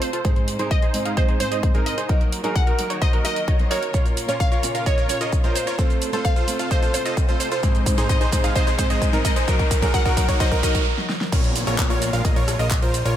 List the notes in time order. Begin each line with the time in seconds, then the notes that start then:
Already playing: C3 A3 F4 A4 C5
0.02 C5, open hi-hat
0.13 F4 A4 C5, closed hi-hat
0.24 G#2 G#3 C4 D#4 G#4 C5, kick, closed hi-hat
0.36 closed hi-hat
0.48 open hi-hat
0.59 G#2 G#3 C4 D#4 G#4 A#4 C5, closed hi-hat
0.71 D#5, kick, closed hi-hat
0.82 D#4 G#4 C5, closed hi-hat
0.93 G#2 G#3 C4 D#4 C5, open hi-hat
1.05 D#4 G#4 F5, closed hi-hat
1.17 D#4 G#4 C5 D#5, kick, closed hi-hat
1.28 D#4 G#4 C5, closed hi-hat
1.40 G#2 G#3 C4 D#4 C5, open hi-hat
1.52 D#4 G#4 D#5, closed hi-hat
1.63 kick, closed hi-hat
1.74 G#2 G#3 C4 D#4 G#4 A#4 D#5, closed hi-hat
1.86 D#5, open hi-hat
1.98 D#4 G#4 C5, closed hi-hat
2.09 D#3 F#3 A#3 D#4 F#4 A#4, kick, closed hi-hat
2.21 closed hi-hat
2.32 open hi-hat
2.43 F#3 A#3 D#4 F#4 G#4 A#4, closed hi-hat
2.56 F#5, kick, closed hi-hat
2.67 D#4 F#4 A#4, closed hi-hat
2.78 F#3 A#3 D#4 A#4, open hi-hat
2.90 D#4 F#4 C#5, closed hi-hat
3.01 D#4 F#4 C5 D#5, kick, closed hi-hat
3.13 D#4 F#4 A#4, closed hi-hat
3.24 F#3 A#3 D#4 F#4 A#4 D#5, open hi-hat
3.36 closed hi-hat
3.48 D#4 F#4 C#5, kick, closed hi-hat
3.59 F#3 A#3 D#4 C5, closed hi-hat
3.71 D#4 F#4 A#4 C#5, open hi-hat
3.83 closed hi-hat
3.93 A#2 C#3 A#3 C#4 F4 A#4 C#5, kick, closed hi-hat, riser, shaker
4.06 closed hi-hat, shaker
4.17 open hi-hat, shaker
4.28 A#2 A#3 C#4 F4 A#4 C5 C#5, closed hi-hat, shaker
4.40 F5, kick, closed hi-hat, shaker
4.52 F4 A#4 C#5, closed hi-hat, shaker
4.62 A#2 A#3 C#4 F4 C#5, open hi-hat, shaker
4.75 F4 A#4 F5, closed hi-hat, shaker
4.86 F4 A#4 C#5 D#5, kick, closed hi-hat, shaker
4.98 F4 A#4 C#5, closed hi-hat, shaker
5.09 A#2 A#3 C#4 F4 C#5, open hi-hat, shaker
5.21 F4 A#4 D#5, closed hi-hat, shaker
5.32 kick, closed hi-hat, shaker
5.43 A#2 A#3 C#4 F4 A#4 C5 D#5, closed hi-hat, shaker
5.55 C5, open hi-hat, shaker
5.67 F4 A#4 C#5, closed hi-hat, shaker
5.78 C3 A3 C4 F4 A4 C5, kick, closed hi-hat, shaker
5.90 closed hi-hat, shaker
6.02 open hi-hat, shaker
6.12 A3 C4 F4 A4 C5, closed hi-hat, shaker
6.25 F5, kick, closed hi-hat, shaker
6.36 F4 A4 C5, closed hi-hat, shaker
6.47 A3 C4 F4 C5, open hi-hat, shaker
6.59 F4 A4 F5, closed hi-hat, shaker
6.71 F4 A4 C5 D#5, kick, closed hi-hat, shaker
6.82 F4 A4 C5, closed hi-hat, shaker
6.93 A3 C4 F4 C5, open hi-hat, shaker
7.06 F4 A4 D#5, closed hi-hat, shaker
7.17 kick, closed hi-hat, shaker
7.28 A3 C4 F4 A4 C5 D#5, closed hi-hat, shaker
7.40 C5, open hi-hat, shaker
7.52 F4 A4 C5, closed hi-hat, shaker
7.62 G#2 G#3 C4 D#4 C5, kick, closed hi-hat, shaker
7.75 closed hi-hat, shaker
7.86 kick, open hi-hat, shaker
7.97 G#2 G#3 C4 D#4 G#4 A#4 C5, closed hi-hat, shaker
8.09 D#5, kick, closed hi-hat, shaker
8.21 D#4 G#4 C5, closed hi-hat, shaker
8.32 G#2 G#3 C4 D#4 C5, kick, open hi-hat, shaker
8.44 D#4 G#4 F5, closed hi-hat, shaker
8.55 D#4 G#4 C5 D#5, kick, closed hi-hat, shaker
8.67 D#4 G#4 C5, closed hi-hat, shaker
8.78 G#2 G#3 C4 D#4 C5, kick, open hi-hat, shaker
8.90 D#4 G#4 D#5, closed hi-hat, shaker
9.02 kick, closed hi-hat, shaker
9.12 G#2 G#3 C4 D#4 G#4 A#4 D#5, closed hi-hat, shaker
9.25 D#5, kick, open hi-hat, shaker
9.36 D#4 G#4 C5, closed hi-hat, shaker
9.47 A#2 F#3 A#3 D#4 F#4 A#4, kick, closed hi-hat, shaker
9.59 kick, closed hi-hat, shaker
9.71 kick, open hi-hat, shaker
9.82 F#3 A#3 D#4 F#4 G#4 A#4, kick, closed hi-hat, shaker
9.94 F#5, kick, closed hi-hat, shaker
10.05 D#4 F#4 A#4, kick, closed hi-hat, shaker
10.16 F#3 A#3 D#4 A#4, kick, open hi-hat, shaker
10.29 D#4 F#4 C#5, kick, closed hi-hat, shaker
10.40 D#4 F#4 C5 D#5, kick, closed hi-hat, shaker
10.52 D#4 F#4 A#4, kick, closed hi-hat, shaker
10.63 F#3 A#3 D#4 F#4 A#4 D#5, kick, open hi-hat, shaker
10.75 kick, closed hi-hat, shaker
10.98 snare
11.09 snare
11.21 snare
11.32 A#1 C#3 F3 A#3 F4 A#4 C#5, kick, closed hi-hat, ride, crash, downlifter, shaker
11.44 closed hi-hat, shaker
11.56 open hi-hat, ride, shaker
11.67 A#1 F4 A#4 C#5, cross-stick, closed hi-hat, shaker
11.78 kick, clap, closed hi-hat, shaker
11.90 A#1 F4 A#4 C#5, closed hi-hat, shaker
12.02 open hi-hat, ride, shaker
12.13 A#1 F4 A#4 F5, closed hi-hat, shaker
12.25 A#1 F4 A#4 D#5, kick, closed hi-hat, ride, shaker
12.36 A#1 F4 A#4 C#5, closed hi-hat, shaker
12.48 cross-stick, open hi-hat, ride, shaker
12.59 A#1 F4 A#4 D#5, closed hi-hat, shaker
12.71 kick, clap, closed hi-hat, shaker
12.82 A#1 F4 A#4 C5, closed hi-hat, shaker
12.94 open hi-hat, ride, shaker
13.05 A#1 F4 A#4 C#5, closed hi-hat, shaker